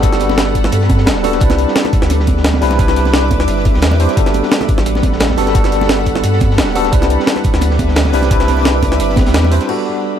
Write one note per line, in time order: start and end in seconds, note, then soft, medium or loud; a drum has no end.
0.00 0.66 G1 medium
0.00 0.02 G3 loud
0.00 1.21 G3 medium
0.00 0.02 B3 medium
0.00 1.22 B3 medium
0.00 0.03 D4 medium
0.00 1.22 D4 medium
0.00 0.04 F#4 medium
0.00 0.05 A4 loud
0.00 1.38 A4 medium
0.00 1.38 F#5 medium
0.00 1.38 B5 medium
0.00 kick loud
0.00 closed hi-hat loud
0.00 closed hi-hat medium
0.00 muted conga medium
0.04 1.22 F#4 medium
0.04 1.23 A4 loud
0.12 snare soft
0.12 closed hi-hat soft
0.20 snare soft
0.20 closed hi-hat medium
0.29 snare soft
0.29 muted conga medium
0.38 snare loud
0.38 closed hi-hat medium
0.55 kick medium
0.55 closed hi-hat medium
0.64 0.71 A1 medium
0.64 snare soft
0.64 muted conga medium
0.72 1.08 G2 medium
0.72 closed hi-hat medium
0.81 snare soft
0.90 kick loud
0.90 closed hi-hat medium
0.90 muted conga medium
0.90 high conga medium
0.98 snare medium
1.06 1.40 D1 medium
1.06 snare loud
1.06 closed hi-hat loud
1.06 closed hi-hat medium
1.16 snare medium
1.23 1.38 G3 loud
1.23 1.39 B3 medium
1.23 1.39 D4 medium
1.23 1.39 F#4 medium
1.23 1.40 A4 loud
1.23 closed hi-hat medium
1.23 open hi-hat medium
1.23 muted conga medium
1.32 snare soft
1.32 closed hi-hat soft
1.40 1.66 C2 loud
1.40 2.59 G3 medium
1.40 2.60 C4 medium
1.40 2.60 D4 medium
1.40 2.60 E4 medium
1.40 4.14 B4 medium
1.40 2.61 B4 loud
1.40 4.14 E5 medium
1.40 4.14 D6 medium
1.40 kick loud
1.40 closed hi-hat medium
1.50 snare soft
1.50 closed hi-hat soft
1.50 muted conga medium
1.58 closed hi-hat medium
1.68 snare soft
1.76 snare loud
1.76 closed hi-hat medium
1.76 closed hi-hat loud
1.85 snare soft
1.85 muted conga medium
1.93 kick loud
1.93 closed hi-hat medium
2.02 2.61 D2 medium
2.02 snare soft
2.10 closed hi-hat medium
2.10 muted conga medium
2.19 snare soft
2.27 kick medium
2.27 closed hi-hat medium
2.27 high conga medium
2.37 snare soft
2.44 snare loud
2.44 closed hi-hat medium
2.44 muted conga medium
2.54 snare medium
2.54 high conga loud
2.61 3.41 C2 medium
2.61 2.76 G3 loud
2.61 2.77 C4 medium
2.61 2.77 D4 medium
2.61 2.77 E4 medium
2.61 2.78 B4 loud
2.61 snare medium
2.61 closed hi-hat medium
2.61 open hi-hat medium
2.71 snare medium
2.71 closed hi-hat soft
2.71 muted conga medium
2.77 3.97 G3 medium
2.77 3.97 C4 medium
2.77 3.98 D4 medium
2.77 3.98 E4 medium
2.77 3.99 B4 loud
2.77 kick loud
2.77 closed hi-hat medium
2.88 snare soft
2.88 closed hi-hat soft
2.96 snare soft
2.96 closed hi-hat medium
3.05 snare soft
3.05 muted conga medium
3.13 snare loud
3.13 closed hi-hat medium
3.31 kick medium
3.31 closed hi-hat medium
3.31 muted conga medium
3.40 3.47 D2 medium
3.40 snare soft
3.40 closed hi-hat soft
3.48 3.76 G1 medium
3.48 closed hi-hat medium
3.57 snare soft
3.65 kick loud
3.65 closed hi-hat medium
3.65 muted conga medium
3.65 high conga medium
3.74 4.07 E2 loud
3.74 snare soft
3.82 snare loud
3.82 closed hi-hat medium
3.91 snare medium
3.91 muted conga medium
3.99 4.14 G3 medium
3.99 4.15 C4 medium
3.99 4.15 D4 medium
3.99 4.15 E4 medium
3.99 4.15 C5 medium
3.99 closed hi-hat medium
3.99 open hi-hat medium
4.09 snare soft
4.09 closed hi-hat soft
4.15 4.42 G1 loud
4.15 5.35 G3 medium
4.15 5.35 B3 medium
4.15 5.36 D4 medium
4.15 5.36 F#4 medium
4.15 6.90 A4 medium
4.15 5.37 A4 loud
4.15 6.90 F#5 medium
4.15 6.90 B5 medium
4.15 kick loud
4.15 closed hi-hat medium
4.26 snare soft
4.26 closed hi-hat soft
4.34 closed hi-hat medium
4.34 muted conga medium
4.43 snare soft
4.51 snare loud
4.51 closed hi-hat medium
4.61 snare soft
4.61 muted conga medium
4.68 kick loud
4.68 closed hi-hat medium
4.78 5.36 A1 medium
4.78 snare soft
4.86 closed hi-hat medium
4.95 snare soft
4.95 muted conga medium
5.03 kick medium
5.03 closed hi-hat medium
5.03 high conga medium
5.13 snare soft
5.20 snare loud
5.20 closed hi-hat medium
5.20 muted conga medium
5.29 snare medium
5.29 high conga medium
5.37 6.17 G1 medium
5.37 5.52 G3 loud
5.37 5.53 B3 medium
5.37 5.53 D4 medium
5.37 5.53 F#4 medium
5.37 5.53 A4 loud
5.37 snare soft
5.37 closed hi-hat medium
5.37 open hi-hat medium
5.47 snare medium
5.47 closed hi-hat soft
5.53 6.73 G3 medium
5.53 6.73 B3 medium
5.53 6.74 D4 medium
5.53 6.74 F#4 medium
5.53 6.74 A4 loud
5.53 kick loud
5.53 closed hi-hat medium
5.53 muted conga medium
5.64 snare soft
5.64 closed hi-hat soft
5.72 snare soft
5.72 closed hi-hat medium
5.81 snare soft
5.81 muted conga medium
5.89 snare loud
5.89 closed hi-hat medium
6.06 kick medium
6.06 closed hi-hat medium
6.16 6.23 A1 medium
6.16 snare soft
6.16 muted conga soft
6.23 6.60 G2 medium
6.23 closed hi-hat medium
6.23 closed hi-hat loud
6.33 snare soft
6.40 kick loud
6.40 closed hi-hat medium
6.40 muted conga medium
6.40 high conga medium
6.51 snare soft
6.58 6.92 D1 medium
6.58 snare loud
6.58 closed hi-hat medium
6.68 snare medium
6.75 6.90 G3 loud
6.75 6.91 B3 medium
6.75 6.91 D4 medium
6.75 6.91 F#4 medium
6.75 6.91 A4 loud
6.75 closed hi-hat medium
6.75 open hi-hat medium
6.75 muted conga medium
6.85 snare medium
6.85 closed hi-hat soft
6.91 7.18 C2 loud
6.91 8.11 G3 medium
6.91 8.11 C4 medium
6.91 8.12 D4 medium
6.91 8.12 E4 medium
6.91 9.66 B4 medium
6.91 8.12 B4 loud
6.91 9.66 E5 medium
6.91 9.66 D6 loud
6.91 kick loud
6.91 closed hi-hat medium
6.91 closed hi-hat loud
7.02 snare soft
7.02 closed hi-hat soft
7.02 muted conga medium
7.10 closed hi-hat medium
7.20 snare medium
7.26 snare loud
7.26 closed hi-hat medium
7.26 closed hi-hat loud
7.36 snare soft
7.36 muted conga soft
7.44 kick loud
7.44 closed hi-hat medium
7.54 8.12 D2 medium
7.54 snare soft
7.61 closed hi-hat medium
7.61 closed hi-hat loud
7.61 muted conga medium
7.71 snare medium
7.79 kick medium
7.79 closed hi-hat medium
7.79 high conga medium
7.88 snare soft
7.96 snare loud
7.96 closed hi-hat medium
7.96 closed hi-hat loud
7.96 muted conga soft
8.05 snare medium
8.05 high conga medium
8.13 8.93 C2 medium
8.13 8.28 G3 loud
8.13 8.29 C4 medium
8.13 8.29 D4 medium
8.13 8.29 E4 medium
8.13 8.29 B4 loud
8.13 snare soft
8.13 closed hi-hat medium
8.13 open hi-hat medium
8.22 snare medium
8.22 closed hi-hat soft
8.22 muted conga medium
8.29 9.49 G3 medium
8.29 9.49 C4 medium
8.29 9.50 D4 medium
8.29 9.50 E4 medium
8.29 9.50 B4 loud
8.29 kick loud
8.29 closed hi-hat medium
8.29 closed hi-hat loud
8.40 snare soft
8.40 closed hi-hat soft
8.48 snare soft
8.48 closed hi-hat medium
8.48 high conga medium
8.57 snare soft
8.57 muted conga soft
8.65 snare loud
8.65 closed hi-hat medium
8.65 closed hi-hat loud
8.83 kick medium
8.83 closed hi-hat medium
8.83 muted conga medium
8.92 8.99 D2 medium
8.92 snare soft
8.92 closed hi-hat soft
9.00 9.28 G1 medium
9.00 closed hi-hat loud
9.09 snare soft
9.16 kick loud
9.16 snare loud
9.16 closed hi-hat medium
9.16 muted conga medium
9.16 high conga loud
9.26 9.59 E2 loud
9.26 snare loud
9.26 closed hi-hat medium
9.34 snare loud
9.34 closed hi-hat loud
9.34 closed hi-hat medium
9.43 snare medium
9.43 muted conga medium
9.51 9.66 G3 medium
9.51 9.67 C4 medium
9.51 9.67 D4 medium
9.51 9.67 E4 medium
9.51 9.67 C5 medium
9.51 closed hi-hat medium
9.51 open hi-hat medium
9.61 snare soft
9.61 closed hi-hat soft
9.67 10.19 G3 medium
9.67 10.19 B3 medium
9.67 10.19 D4 medium
9.67 9.84 F#4 medium
9.67 10.19 A4 medium
9.67 10.19 F#5 medium
9.67 crash medium